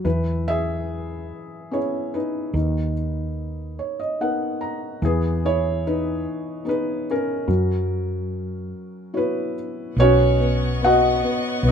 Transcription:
0.04 fretless electric bass E2, felt piano E3 E4 B4
0.48 felt piano G#4 E5
1.71 felt piano B3 C#4 E4 G#4 C#5
2.14 felt piano D#4 B4
2.54 fretless electric bass D#2, felt piano D#3
3.79 felt piano C#5
4.00 felt piano D#5
4.21 felt piano B3 D#4 A#4 F#5
4.61 felt piano A#5
5.02 fretless electric bass E2, felt piano E3 B3 G#4
5.45 felt piano E4 C#5
5.87 felt piano D#4 B4
6.65 felt piano B3 D#4 G#4
6.69 felt piano B4
7.11 felt piano C#4 A#4
7.48 fretless electric bass F#2, felt piano F#3
9.14 felt piano E4 F#4 B4 C#5
9.18 felt piano B3 E4
9.96 fretless electric bass B1, string section B3 D#5 F#5 C#6, felt piano B3 C#4 C#5
10.01 felt piano F#4
10.40 felt piano B3
10.82 felt piano B3 F#5
10.86 felt piano F#4 D#5
11.23 felt piano B3
11.63 fretless electric bass B1, felt piano B3

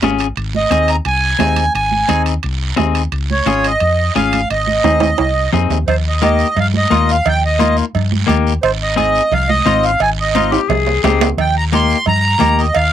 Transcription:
0.02 fingered electric bass G#1, clean electric guitar C#4 F4 G#4, high conga, high timbale, low timbale, short guiro
0.19 high timbale, short guiro
0.36 fingered electric bass G#1, high conga, high timbale, long guiro
0.55 accordion D#5, high conga
0.71 fingered electric bass D#2, clean electric guitar C4 D#4 G#4, high conga, high timbale, short guiro
0.88 accordion A#5, high timbale, short guiro
1.05 fingered electric bass C2, accordion G#5, high conga, high timbale, long guiro
1.39 fingered electric bass D#2, clean electric guitar C4 D#4 G#4, high conga, high timbale, low timbale, short guiro
1.56 high conga, high timbale, short guiro
1.74 fingered electric bass G#1, accordion G#5, high conga, high timbale, long guiro
1.91 high conga
2.08 fingered electric bass D#2, clean electric guitar C4 D#4 G#4, high conga, high timbale, short guiro
2.26 high timbale, short guiro
2.43 fingered electric bass C2, high conga, high timbale, long guiro
2.76 fingered electric bass D#2, clean electric guitar C4 D#4 G#4, high conga, high timbale, low timbale, short guiro
2.95 high timbale, short guiro
3.12 fingered electric bass C#2, high conga, high timbale, long guiro
3.31 accordion C#5, high conga
3.46 fingered electric bass G#1, clean electric guitar C#4 F4 G#4, high conga, high timbale, short guiro
3.64 accordion D#5, high timbale, short guiro
3.80 fingered electric bass F2, high conga, high timbale, long guiro
4.15 fingered electric bass G#1, clean electric guitar C#4 F4 G#4, accordion F5, high conga, high timbale, short guiro
4.33 high conga, high timbale, short guiro
4.50 fingered electric bass G#1, accordion D#5, high conga, high timbale, long guiro
4.67 high conga
4.84 fingered electric bass D#2, clean electric guitar C4 D#4 G#4, high conga, high timbale, short guiro
5.00 high conga, high timbale, short guiro
5.18 fingered electric bass C2, high timbale, long guiro
5.53 fingered electric bass F2, clean electric guitar C4 D#4 G#4, low conga, low timbale, short guiro
5.70 fingered electric bass D#2, low conga, low timbale, short guiro
5.87 fingered electric bass D#2, accordion C5, cowbell, low conga, long guiro
6.08 accordion D#5
6.22 clean electric guitar A#3 D#4 G4, accordion D#5, cowbell, high conga, short guiro
6.39 short guiro
6.56 fingered electric bass G2, accordion F5, cowbell, low conga, long guiro
6.74 accordion D#5, high conga
6.90 fingered electric bass D#2, clean electric guitar A#3 D#4 F4, cowbell, high conga, short guiro
7.09 accordion F5, short guiro
7.25 fingered electric bass D#2, accordion G5, cowbell, low conga, long guiro
7.46 accordion D#5
7.59 clean electric guitar A#3 D#4 F4, cowbell, high conga, short guiro
7.77 short guiro
7.95 fingered electric bass G2, cowbell, low conga, long guiro
8.12 high conga
8.27 fingered electric bass D#2, clean electric guitar A#3 D#4 G4, cowbell, high conga, low conga, short guiro
8.47 short guiro
8.63 fingered electric bass G#1, accordion C5, cowbell, long guiro
8.83 accordion D#5
8.96 clean electric guitar C4 D#4 G#4, accordion D#5, cowbell, high conga, short guiro
9.15 short guiro
9.32 fingered electric bass C2, accordion F5, cowbell, low conga, long guiro
9.49 accordion D#5, high conga
9.66 fingered electric bass G#1, clean electric guitar C4 D#4 F4, cowbell, high conga, short guiro
9.83 accordion F5, short guiro
10.00 fingered electric bass G#1, accordion G#5, cowbell, long guiro
10.20 accordion D#5
10.35 clean electric guitar C4 D#4 F4, cowbell, high conga, short guiro
10.51 tenor saxophone G4, high timbale, short guiro
10.69 fingered electric bass C2, tenor saxophone G#4, cowbell, low conga, low timbale, long guiro
10.87 low timbale
11.03 fingered electric bass C#2, clean electric guitar C4 D#4 G4, tenor saxophone G#4, cowbell, high conga, low timbale, short guiro
11.21 low timbale, short guiro
11.37 fingered electric bass D#2, accordion G5, cowbell, low conga, long guiro
11.57 accordion A#5
11.72 clean electric guitar A#3 D#4 G4, accordion C6, cowbell, high conga, short guiro
11.90 short guiro
12.06 fingered electric bass G2, accordion A#5, cowbell, low conga, long guiro
12.39 fingered electric bass D#2, clean electric guitar A#3 D#4 G4, cowbell, high conga, low conga, short guiro
12.58 accordion D#5, short guiro
12.74 fingered electric bass D#2, accordion F5, cowbell, long guiro

